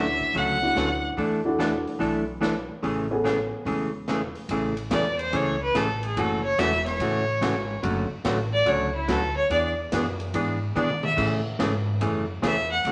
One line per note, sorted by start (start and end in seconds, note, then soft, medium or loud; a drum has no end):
0.00 0.17 D2 medium
0.00 0.32 C#4 medium
0.00 0.32 D4 medium
0.00 0.32 E4 medium
0.00 0.32 F#4 medium
0.00 0.39 E5 loud
0.21 kick soft
0.33 0.69 C#2 medium
0.33 0.57 D3 medium
0.33 0.57 F#3 medium
0.33 0.57 A3 medium
0.33 0.58 C#4 medium
0.33 0.57 F#4 medium
0.33 1.05 F#5 loud
0.33 open hi-hat soft
0.62 1.15 C#4 medium
0.62 1.15 D4 medium
0.62 1.15 E4 medium
0.62 1.16 F#4 medium
0.75 1.11 D2 medium
0.75 0.88 D3 medium
0.75 0.88 F#3 medium
0.75 0.88 A3 medium
0.75 0.89 C#4 medium
0.75 0.89 F#4 medium
0.75 snare medium
0.75 closed hi-hat medium
1.17 1.84 E2 medium
1.17 1.40 E3 medium
1.17 1.40 A3 medium
1.17 1.40 D4 medium
1.17 1.40 E4 medium
1.17 1.41 A4 medium
1.17 open hi-hat soft
1.45 1.98 A3 medium
1.45 1.98 D4 medium
1.45 1.98 E4 medium
1.45 1.98 F#4 medium
1.59 1.71 E3 medium
1.59 1.71 A3 medium
1.59 1.71 D4 medium
1.59 1.71 E4 medium
1.59 1.71 A4 medium
1.59 snare medium
1.59 closed hi-hat medium
1.87 open hi-hat soft
1.99 2.67 B1 medium
1.99 2.22 E3 medium
1.99 2.23 A3 medium
1.99 2.23 D4 medium
1.99 2.23 E4 medium
1.99 2.23 A4 medium
1.99 open hi-hat soft
2.41 2.53 E3 medium
2.41 2.54 A3 medium
2.41 2.54 D4 medium
2.41 2.54 E4 medium
2.41 2.54 A4 medium
2.41 snare medium
2.41 closed hi-hat medium
2.83 3.50 A1 medium
2.83 3.06 C#3 medium
2.83 3.06 E3 medium
2.83 3.06 A3 medium
2.83 3.06 C#4 medium
2.83 3.06 G#4 medium
2.83 open hi-hat soft
3.10 3.64 A3 medium
3.10 3.64 B3 medium
3.10 3.64 C#4 medium
3.10 3.64 G#4 medium
3.24 3.37 C#3 medium
3.24 3.37 E3 medium
3.24 3.37 A3 medium
3.24 3.37 C#4 medium
3.24 3.37 G#4 medium
3.24 snare medium
3.24 closed hi-hat medium
3.65 4.33 E1 medium
3.65 3.89 C#3 medium
3.65 3.89 E3 medium
3.65 3.90 A3 medium
3.65 3.90 C#4 medium
3.65 3.90 G#4 medium
3.65 open hi-hat soft
4.08 4.20 C#3 medium
4.08 4.21 E3 medium
4.08 4.21 A3 medium
4.08 4.21 C#4 medium
4.08 4.21 G#4 medium
4.08 snare medium
4.08 closed hi-hat soft
4.35 open hi-hat soft
4.49 4.90 A1 medium
4.49 4.73 C#3 medium
4.49 4.73 E3 soft
4.49 4.73 A3 medium
4.49 4.73 C#4 medium
4.49 4.73 G#4 medium
4.49 ride medium
4.77 ride medium
4.90 5.32 E2 medium
4.90 5.03 C#3 medium
4.90 5.04 E3 medium
4.90 5.04 A3 medium
4.90 5.04 C#4 medium
4.90 5.04 G#4 medium
4.90 5.18 D5 medium
4.90 snare medium
4.90 hi-hat pedal medium
4.90 ride medium
5.19 5.37 C5 medium
5.19 ride soft
5.33 5.73 C#2 medium
5.33 5.56 C#3 medium
5.33 5.56 E3 medium
5.33 5.56 A3 medium
5.33 5.56 C#4 medium
5.33 5.56 G#4 medium
5.33 5.62 C#5 medium
5.33 ride medium
5.63 5.78 B4 medium
5.75 6.15 A1 medium
5.75 5.87 C#3 medium
5.75 5.87 E3 medium
5.75 5.87 A3 medium
5.75 5.87 C#4 medium
5.75 5.87 G#4 medium
5.75 6.04 A4 medium
5.75 snare medium
5.75 hi-hat pedal medium
5.75 ride medium
6.03 6.19 G#4 medium
6.03 ride soft
6.16 6.57 F#1 medium
6.16 6.39 C#3 medium
6.16 6.40 E3 medium
6.16 6.40 A3 medium
6.16 6.40 C#4 medium
6.16 6.40 F#4 medium
6.16 6.43 A4 medium
6.16 ride medium
6.43 6.61 C#5 medium
6.58 6.99 E1 medium
6.58 6.70 C#3 medium
6.58 6.71 E3 medium
6.58 6.71 A3 medium
6.58 6.71 C#4 medium
6.58 6.71 F#4 medium
6.58 6.86 E5 loud
6.58 snare medium
6.58 hi-hat pedal medium
6.58 ride medium
6.86 7.80 C#5 loud
6.86 snare soft
6.86 ride soft
6.99 7.40 A1 medium
6.99 7.23 C#3 medium
6.99 7.23 E3 medium
6.99 7.23 A3 medium
6.99 7.23 C#4 medium
6.99 7.23 F#4 medium
6.99 ride medium
7.41 7.82 G#1 medium
7.41 7.54 C#3 medium
7.41 7.54 E3 medium
7.41 7.54 A3 medium
7.41 7.54 C#4 medium
7.41 7.54 F#4 medium
7.41 snare medium
7.41 hi-hat pedal medium
7.41 ride medium
7.82 8.09 F#1 medium
7.82 8.06 D3 medium
7.82 8.06 F#3 medium
7.82 8.06 A3 medium
7.82 8.06 C#4 medium
7.82 8.06 F#4 medium
7.82 ride medium
8.11 muted upright bass stroke soft
8.24 8.65 A1 medium
8.24 8.37 D3 medium
8.24 8.37 F#3 medium
8.24 8.37 A3 medium
8.24 8.38 C#4 medium
8.24 8.38 F#4 medium
8.24 snare medium
8.24 hi-hat pedal medium
8.24 ride medium
8.53 8.70 D5 medium
8.66 9.07 C#2 medium
8.66 8.89 D3 medium
8.66 8.89 F#3 medium
8.66 8.89 A3 medium
8.66 8.89 C#4 medium
8.66 8.90 F#4 medium
8.66 8.95 C#5 medium
8.66 ride medium
8.96 9.13 E4 medium
9.08 9.49 D2 medium
9.08 9.20 D3 medium
9.08 9.21 F#3 medium
9.08 9.21 A3 medium
9.08 9.21 C#4 medium
9.08 9.21 F#4 medium
9.08 9.36 A4 medium
9.08 snare medium
9.08 hi-hat pedal medium
9.08 ride medium
9.37 9.50 C#5 medium
9.50 9.91 E2 medium
9.50 9.73 E3 medium
9.50 9.73 B3 medium
9.50 9.73 D4 medium
9.50 9.74 G#4 medium
9.50 9.67 D5 medium
9.50 ride medium
9.92 10.33 F#2 medium
9.92 10.05 E3 medium
9.92 10.05 B3 medium
9.92 10.05 D4 medium
9.92 10.05 G#4 medium
9.92 snare medium
9.92 hi-hat pedal medium
9.92 ride medium
10.20 ride soft
10.34 10.74 G#2 medium
10.34 10.57 E3 medium
10.34 10.57 B3 medium
10.34 10.57 D4 medium
10.34 10.57 G#4 medium
10.34 ride medium
10.75 11.16 B2 medium
10.75 10.88 E3 medium
10.75 10.88 B3 medium
10.75 10.88 D4 medium
10.75 10.88 G#4 medium
10.75 11.04 D5 medium
10.75 hi-hat pedal medium
10.75 mid tom soft
10.90 mid tom medium
11.03 11.17 E5 medium
11.03 mid tom medium
11.16 11.58 A2 medium
11.16 11.40 C#3 medium
11.16 11.40 E3 medium
11.16 11.40 A3 medium
11.16 11.40 C#4 medium
11.16 11.40 G#4 medium
11.16 kick medium
11.16 crash medium
11.59 12.00 G#2 medium
11.59 11.71 C#3 medium
11.59 11.71 E3 medium
11.59 11.72 A3 medium
11.59 11.72 C#4 medium
11.59 11.72 G#4 medium
11.59 snare medium
11.59 hi-hat pedal medium
11.59 ride medium
12.01 12.42 F#2 medium
12.01 12.24 C#3 medium
12.01 12.24 E3 medium
12.01 12.24 A3 medium
12.01 12.24 C#4 medium
12.01 12.24 G#4 medium
12.01 ride medium
12.42 12.83 E2 medium
12.42 12.55 C#3 medium
12.42 12.55 E3 medium
12.42 12.55 A3 medium
12.42 12.55 C#4 medium
12.42 12.55 G#4 medium
12.42 12.70 E5 medium
12.42 snare medium
12.42 hi-hat pedal medium
12.42 ride medium
12.72 12.84 F#5 medium
12.85 12.92 D2 medium
12.85 12.92 D3 medium
12.85 12.92 F#3 medium
12.85 12.92 A3 medium
12.85 12.92 C#4 medium
12.85 12.92 F#4 medium
12.85 ride medium